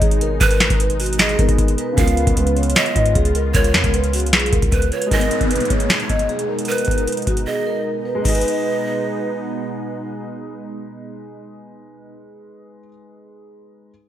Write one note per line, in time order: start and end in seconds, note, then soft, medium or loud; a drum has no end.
0.00 0.39 G#1 loud
0.00 1.95 B2 medium
0.00 1.32 G#3 medium
0.00 5.07 G#3 medium
0.00 1.37 B3 medium
0.00 1.34 D#4 medium
0.00 1.95 D#4 medium
0.00 1.36 G#4 medium
0.00 0.17 G#4 medium
0.00 kick loud
0.00 closed hi-hat medium
0.11 closed hi-hat medium
0.21 0.37 A#4 medium
0.21 closed hi-hat medium
0.41 0.69 G#1 loud
0.41 0.78 A#4 medium
0.41 0.78 B4 loud
0.41 kick loud
0.41 closed hi-hat medium
0.51 closed hi-hat medium
0.60 snare loud
0.60 closed hi-hat medium
0.70 1.36 G#1 loud
0.70 kick medium
0.70 closed hi-hat medium
0.80 0.96 B4 medium
0.80 closed hi-hat medium
0.90 closed hi-hat medium
1.00 1.16 F#4 medium
1.00 closed hi-hat soft
1.00 open hi-hat medium
1.06 closed hi-hat medium
1.13 closed hi-hat medium
1.19 1.36 G#4 medium
1.19 1.56 D#5 medium
1.19 snare loud
1.19 closed hi-hat medium
1.29 closed hi-hat medium
1.36 1.77 G#1 loud
1.36 1.96 G#3 medium
1.36 1.97 D#4 medium
1.36 1.76 A#4 medium
1.36 1.98 A#4 medium
1.36 kick loud
1.36 closed hi-hat medium
1.41 1.99 B3 medium
1.49 kick medium
1.49 closed hi-hat medium
1.58 kick loud
1.58 closed hi-hat medium
1.68 closed hi-hat medium
1.78 1.94 B4 medium
1.78 closed hi-hat medium
1.92 5.05 C#3 medium
1.92 5.06 C#4 medium
1.97 2.26 C#2 loud
1.97 5.08 C#3 medium
1.97 5.08 B3 medium
1.97 5.08 F4 medium
1.97 2.34 A#4 medium
1.97 2.35 F5 loud
1.97 kick loud
1.97 closed hi-hat loud
2.03 5.10 B3 medium
2.07 closed hi-hat medium
2.17 closed hi-hat medium
2.27 2.37 C#2 loud
2.27 kick medium
2.27 closed hi-hat medium
2.37 2.75 C#2 loud
2.37 2.53 B4 medium
2.37 closed hi-hat medium
2.47 closed hi-hat medium
2.57 2.93 C#5 medium
2.57 closed hi-hat soft
2.63 closed hi-hat medium
2.70 closed hi-hat medium
2.76 3.13 D#5 loud
2.76 snare loud
2.76 closed hi-hat medium
2.86 closed hi-hat medium
2.96 3.15 G#2 loud
2.96 3.12 D#5 medium
2.96 kick loud
2.96 closed hi-hat medium
3.06 closed hi-hat medium
3.15 3.53 C#2 loud
3.15 3.31 G#4 medium
3.15 kick medium
3.15 closed hi-hat medium
3.25 closed hi-hat medium
3.35 3.51 A#4 medium
3.35 closed hi-hat medium
3.54 3.76 C#2 loud
3.54 3.91 A#4 loud
3.54 3.91 C#5 loud
3.54 kick loud
3.54 closed hi-hat medium
3.64 closed hi-hat medium
3.74 3.83 F2 loud
3.74 snare loud
3.74 closed hi-hat medium
3.84 4.34 C#2 loud
3.84 kick medium
3.84 closed hi-hat medium
3.94 4.10 B4 medium
3.94 closed hi-hat medium
4.04 closed hi-hat medium
4.13 4.29 F#4 medium
4.13 closed hi-hat medium
4.13 open hi-hat medium
4.20 closed hi-hat medium
4.26 closed hi-hat medium
4.33 4.52 B1 loud
4.33 4.49 G#4 medium
4.33 snare loud
4.33 closed hi-hat medium
4.40 closed hi-hat medium
4.46 closed hi-hat medium
4.53 4.90 C#2 loud
4.53 4.90 A#4 medium
4.53 kick loud
4.53 closed hi-hat medium
4.62 kick loud
4.62 closed hi-hat medium
4.72 4.91 B4 medium
4.72 kick loud
4.72 closed hi-hat medium
4.82 closed hi-hat medium
4.92 5.08 B4 medium
4.92 5.10 C#5 medium
4.92 closed hi-hat soft
5.02 closed hi-hat medium
5.06 8.13 G#3 medium
5.06 8.20 D#4 medium
5.11 8.22 B2 medium
5.11 8.22 G#3 medium
5.11 8.22 B3 medium
5.11 8.22 D#4 medium
5.11 8.22 G#4 medium
5.11 5.49 A#4 loud
5.11 5.48 D#5 loud
5.11 kick loud
5.11 closed hi-hat medium
5.11 downlifter medium
5.17 8.24 B3 medium
5.21 closed hi-hat medium
5.31 closed hi-hat medium
5.41 kick medium
5.41 closed hi-hat medium
5.51 5.67 B4 medium
5.51 closed hi-hat medium
5.56 closed hi-hat medium
5.60 closed hi-hat medium
5.65 closed hi-hat soft
5.70 6.07 C#5 medium
5.70 kick medium
5.70 closed hi-hat medium
5.80 closed hi-hat medium
5.90 6.27 C#5 medium
5.90 snare loud
5.90 closed hi-hat medium
6.00 closed hi-hat soft
6.09 6.25 D#5 medium
6.09 kick loud
6.09 closed hi-hat medium
6.19 closed hi-hat medium
6.29 6.45 G#4 medium
6.29 closed hi-hat soft
6.39 closed hi-hat medium
6.49 6.65 A#4 medium
6.59 closed hi-hat medium
6.65 7.05 A#4 medium
6.65 7.05 B4 loud
6.65 closed hi-hat medium
6.72 closed hi-hat medium
6.78 closed hi-hat medium
6.85 kick loud
6.85 closed hi-hat medium
6.91 closed hi-hat medium
6.98 closed hi-hat medium
7.07 7.23 B4 medium
7.07 closed hi-hat medium
7.12 closed hi-hat medium
7.17 closed hi-hat medium
7.22 closed hi-hat soft
7.27 7.43 F#4 medium
7.27 kick medium
7.27 closed hi-hat medium
7.37 closed hi-hat medium
7.47 7.63 G#4 medium
7.47 7.84 D#5 medium
7.67 8.03 A#4 medium
8.05 8.21 B4 medium
8.15 12.80 G#3 medium
8.22 12.15 B2 medium
8.22 12.15 G#3 medium
8.22 12.15 B3 medium
8.22 12.83 D#4 medium
8.22 12.15 D#4 medium
8.22 9.39 B4 medium
8.22 9.39 D#5 medium
8.22 kick loud
8.22 crash medium
8.28 12.87 G#4 medium
8.28 closed hi-hat medium
8.35 12.90 B4 medium
8.35 closed hi-hat medium
8.41 closed hi-hat medium
8.48 closed hi-hat medium